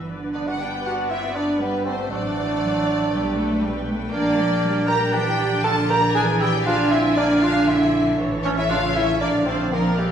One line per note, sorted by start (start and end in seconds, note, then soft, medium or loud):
0.00 2.07 G1 medium
0.00 2.06 B4 medium
0.10 0.60 D3 medium
0.10 2.07 D5 medium
0.34 0.47 B3 medium
0.34 0.49 D4 medium
0.34 0.47 D4 medium
0.34 0.46 D5 medium
0.34 0.39 D5 medium
0.34 0.49 D5 medium
0.47 0.53 D4 medium
0.47 0.60 F#4 medium
0.47 0.61 F#4 medium
0.47 0.62 F#5 medium
0.47 0.60 F#5 medium
0.59 1.59 B3 medium
0.59 0.72 D4 medium
0.59 0.84 G4 medium
0.59 0.87 G4 medium
0.59 0.84 G5 medium
0.59 0.85 G5 medium
0.59 0.86 G5 medium
0.85 1.12 D4 medium
0.85 0.96 F#4 medium
0.85 1.10 F#4 loud
0.85 1.10 F#5 medium
0.85 0.93 F#5 medium
0.85 0.91 F#5 medium
1.09 1.37 C4 medium
1.09 1.21 E4 medium
1.09 1.35 E5 medium
1.35 1.61 B3 medium
1.35 1.60 D4 medium
1.35 1.63 D4 medium
1.35 1.60 D5 medium
1.35 1.44 D5 medium
1.35 1.62 D5 medium
1.60 1.87 G3 medium
1.60 2.11 G3 medium
1.60 1.86 B3 medium
1.60 1.85 B3 medium
1.60 1.85 B4 medium
1.85 2.10 A3 medium
1.85 1.97 C4 medium
1.85 2.11 C4 medium
1.85 2.10 C5 medium
2.10 3.11 A1 medium
2.10 2.19 F#3 medium
2.10 3.83 A3 medium
2.10 3.83 D4 loud
2.10 3.87 D4 medium
2.10 3.07 C5 medium
2.10 3.87 D5 medium
2.10 3.83 D5 medium
2.10 3.84 D5 medium
2.10 3.07 F#5 medium
2.36 2.60 E3 medium
2.61 3.11 F#3 medium
3.11 4.12 B1 medium
3.11 3.36 G3 medium
3.11 4.08 B4 medium
3.11 6.11 G5 medium
3.36 3.62 A3 medium
3.62 3.87 G3 medium
3.88 4.13 A3 medium
4.11 8.15 A#1 medium
4.11 4.89 A#3 loud
4.11 4.38 A#3 loud
4.11 4.84 D4 loud
4.11 4.85 D4 loud
4.11 4.84 D5 loud
4.11 8.15 D5 medium
4.11 4.84 D5 medium
4.11 4.84 D5 loud
4.39 4.63 F3 medium
4.64 5.14 G3 medium
4.87 5.14 G4 loud
4.87 4.99 A#4 loud
4.87 5.14 A#4 loud
4.87 4.93 A#5 medium
4.87 5.13 A#5 loud
4.87 4.96 A#5 loud
5.13 5.39 E3 loud
5.13 5.64 D4 loud
5.13 5.63 G4 loud
5.13 5.64 G4 loud
5.13 5.63 G5 loud
5.13 5.66 G5 loud
5.13 5.63 G5 loud
5.38 6.15 D3 medium
5.64 5.89 F4 loud
5.64 5.76 A4 loud
5.64 5.91 A4 loud
5.64 5.89 A5 loud
5.64 5.89 A5 medium
5.89 6.01 G4 loud
5.89 6.01 A#4 loud
5.89 6.16 A#4 loud
5.89 6.15 A#5 loud
5.89 6.14 A#5 loud
6.15 6.65 E3 loud
6.15 6.27 D4 loud
6.15 6.42 G#4 loud
6.15 6.41 G#4 loud
6.15 6.21 G#5 loud
6.15 8.15 G#5 loud
6.15 6.23 G#5 loud
6.15 6.41 G#5 loud
6.40 6.52 E4 loud
6.40 6.68 G4 loud
6.40 6.66 G4 loud
6.40 6.46 G5 loud
6.40 6.66 G5 medium
6.40 6.66 G5 loud
6.65 7.16 D3 medium
6.65 6.93 D4 loud
6.65 6.93 F4 loud
6.65 6.92 F4 loud
6.65 6.91 F5 medium
6.65 6.93 F5 loud
6.91 7.19 C4 loud
6.91 7.16 E4 loud
6.91 7.17 E4 loud
6.91 6.99 E5 medium
6.91 7.17 E5 loud
6.91 7.18 E5 medium
7.15 8.17 D3 loud
7.15 7.45 A#3 loud
7.15 7.42 D4 loud
7.15 7.28 D4 loud
7.15 7.41 D5 loud
7.15 7.44 D5 loud
7.15 7.25 D5 medium
7.42 7.68 D4 loud
7.42 7.68 F4 loud
7.42 7.70 F4 loud
7.42 7.68 F5 loud
7.42 7.69 F5 loud
7.42 7.67 F5 loud
7.67 8.18 C4 medium
7.67 8.19 E4 loud
7.67 8.19 E4 medium
7.67 8.18 E5 medium
7.67 8.19 E5 medium
7.67 8.18 E5 medium
8.19 9.17 A1 medium
8.19 8.70 E3 loud
8.19 9.17 A4 medium
8.19 9.17 C#5 medium
8.43 8.50 A3 medium
8.43 8.56 C#4 loud
8.43 8.48 C#5 medium
8.43 8.56 C#5 medium
8.43 8.49 C#5 loud
8.56 8.63 C#4 medium
8.56 8.62 E4 loud
8.56 8.63 E4 loud
8.56 8.70 E5 medium
8.56 8.69 E5 loud
8.56 8.70 E5 loud
8.69 9.21 C#3 medium
8.69 8.81 D4 loud
8.69 8.94 F4 loud
8.69 8.82 F4 loud
8.69 8.94 F5 loud
8.69 8.95 F5 medium
8.69 8.96 F5 loud
8.95 9.20 C#4 medium
8.95 9.21 E4 loud
8.95 9.07 E4 loud
8.95 9.21 E5 loud
8.95 9.23 E5 medium
8.95 9.21 E5 loud
9.20 10.12 A#1 medium
9.20 9.71 D3 medium
9.20 9.32 A#3 medium
9.20 9.46 D4 loud
9.20 9.45 D4 loud
9.20 9.45 D5 medium
9.20 9.71 D5 medium
9.20 9.29 D5 medium
9.20 9.47 D5 loud
9.20 9.71 F5 medium
9.46 9.72 A3 medium
9.46 9.74 C4 loud
9.46 9.72 C4 loud
9.46 9.73 C5 medium
9.46 9.72 C5 medium
9.46 9.55 C5 medium
9.71 10.12 F3 medium
9.71 9.98 F3 medium
9.71 9.98 A#3 medium
9.71 10.00 A#3 medium
9.71 9.97 A#4 medium
9.71 10.12 D5 medium
9.71 10.12 F5 medium
9.98 10.10 E3 medium
9.98 10.09 G3 medium
9.98 10.12 G3 medium
9.98 10.12 G4 medium